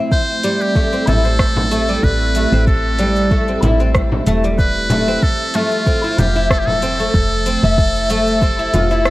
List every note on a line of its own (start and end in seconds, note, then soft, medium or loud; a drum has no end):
0.00 5.19 A3 medium
0.00 0.11 C4 medium
0.00 5.19 C4 medium
0.00 5.19 E4 medium
0.11 5.18 G4 medium
0.11 0.63 C5 loud
0.11 kick medium
0.11 cabasa soft
0.43 0.74 G3 loud
0.43 closed hi-hat medium
0.43 cabasa medium
0.61 1.10 G4 medium
0.61 cabasa soft
0.75 0.91 A3 medium
0.75 kick loud
0.75 cabasa soft
0.92 1.07 C4 medium
0.92 cabasa soft
1.07 1.98 A1 medium
1.07 1.24 E4 medium
1.07 2.05 A4 loud
1.07 closed hi-hat medium
1.07 frame drum medium
1.07 cabasa medium
1.24 1.70 C4 medium
1.24 cabasa soft
1.39 kick medium
1.39 cross-stick medium
1.39 cabasa soft
1.56 frame drum medium
1.71 1.87 A3 medium
1.71 closed hi-hat medium
1.71 cabasa medium
1.88 2.03 G3 medium
1.88 cabasa soft
2.03 2.46 A1 medium
2.03 2.66 B4 medium
2.03 kick loud
2.03 cabasa soft
2.35 2.52 A3 medium
2.35 closed hi-hat medium
2.35 cabasa medium
2.52 3.58 A1 medium
2.52 2.98 C4 medium
2.52 cabasa soft
2.67 3.59 A4 medium
2.67 kick loud
2.67 cabasa soft
2.99 3.30 G3 loud
2.99 closed hi-hat medium
2.99 cabasa medium
3.16 cabasa soft
3.31 3.46 A3 medium
3.31 kick medium
3.31 cabasa soft
3.48 3.62 C4 medium
3.48 cabasa soft
3.63 4.21 A1 medium
3.63 3.79 E4 medium
3.63 closed hi-hat medium
3.63 frame drum medium
3.63 cabasa medium
3.80 4.25 C4 medium
3.80 cabasa soft
3.94 kick medium
3.94 cross-stick medium
3.94 cabasa soft
4.12 frame drum medium
4.27 5.17 E1 medium
4.27 4.42 A3 loud
4.27 closed hi-hat medium
4.27 cabasa medium
4.44 4.58 G3 medium
4.44 cabasa soft
4.59 5.24 B4 loud
4.59 kick medium
4.59 cabasa soft
4.90 5.07 A3 medium
4.90 closed hi-hat medium
4.90 frame drum medium
4.90 cabasa medium
5.08 5.23 C4 medium
5.08 cabasa soft
5.22 7.76 F3 medium
5.22 9.10 A3 medium
5.22 5.57 A4 loud
5.22 9.10 C5 medium
5.22 9.10 E5 medium
5.22 kick medium
5.22 cabasa soft
5.54 5.85 A3 loud
5.54 6.20 F4 medium
5.54 closed hi-hat medium
5.54 cabasa medium
5.71 cabasa soft
5.86 6.02 C4 medium
5.86 kick medium
5.86 cabasa soft
6.04 6.18 E4 medium
6.04 cabasa soft
6.18 7.09 F1 medium
6.18 6.35 F4 medium
6.18 6.52 G4 medium
6.18 closed hi-hat medium
6.18 frame drum medium
6.18 cabasa medium
6.36 6.81 E4 medium
6.36 cabasa soft
6.50 6.60 A4 medium
6.50 kick medium
6.50 cross-stick medium
6.50 cabasa soft
6.58 6.67 G4 medium
6.66 9.10 A4 medium
6.66 frame drum medium
6.82 6.98 C4 loud
6.82 closed hi-hat medium
6.82 cabasa medium
7.00 7.14 A3 medium
7.00 cabasa soft
7.14 7.57 F1 medium
7.14 kick medium
7.14 cabasa soft
7.46 7.62 C4 medium
7.46 closed hi-hat medium
7.46 cabasa medium
7.63 8.68 F1 loud
7.63 8.09 E4 medium
7.63 cabasa soft
7.78 9.10 G4 medium
7.78 kick medium
7.78 cabasa soft
7.95 cabasa soft
8.10 8.40 A3 loud
8.10 closed hi-hat medium
8.10 cabasa medium
8.27 cabasa soft
8.42 8.57 C4 medium
8.42 kick medium
8.42 cabasa soft
8.59 8.73 E4 medium
8.59 cabasa soft
8.74 9.10 F1 medium
8.74 8.90 F4 medium
8.74 closed hi-hat medium
8.74 frame drum medium
8.74 cabasa medium
8.91 9.10 E4 medium
8.91 cabasa soft
9.05 cross-stick medium
9.05 cabasa soft